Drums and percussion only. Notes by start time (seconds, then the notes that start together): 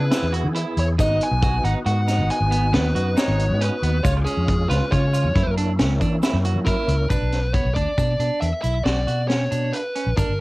0.11 snare, closed hi-hat, shaker
0.34 closed hi-hat
0.55 closed hi-hat
0.77 closed hi-hat
0.99 kick, closed hi-hat, shaker
1.21 closed hi-hat
1.42 kick, closed hi-hat, shaker
1.65 closed hi-hat
1.86 closed hi-hat
2.08 snare, closed hi-hat, shaker
2.30 closed hi-hat
2.52 closed hi-hat, shaker
2.74 snare, closed hi-hat
2.96 closed hi-hat
3.17 snare, closed hi-hat, shaker
3.39 closed hi-hat
3.61 closed hi-hat
3.83 closed hi-hat
4.04 kick, closed hi-hat, shaker
4.26 closed hi-hat, shaker
4.48 kick, closed hi-hat
4.71 snare, closed hi-hat
4.92 kick, closed hi-hat
5.14 closed hi-hat, shaker
5.36 kick, closed hi-hat
5.57 closed hi-hat
5.79 snare, closed hi-hat, shaker
6.01 kick, closed hi-hat, shaker
6.23 snare, closed hi-hat, shaker
6.44 closed hi-hat, shaker
6.66 kick, closed hi-hat, shaker
6.88 closed hi-hat
7.10 kick, closed hi-hat, shaker
7.32 snare, closed hi-hat
7.54 kick, closed hi-hat
7.76 kick, closed hi-hat
7.98 kick, closed hi-hat, shaker
8.20 closed hi-hat, shaker
8.42 closed hi-hat, shaker
8.64 closed hi-hat, shaker
8.86 snare, closed hi-hat
9.08 closed hi-hat, shaker
9.30 snare, closed hi-hat, shaker
9.52 closed hi-hat, shaker
9.73 closed hi-hat
9.95 closed hi-hat
10.17 kick, closed hi-hat, shaker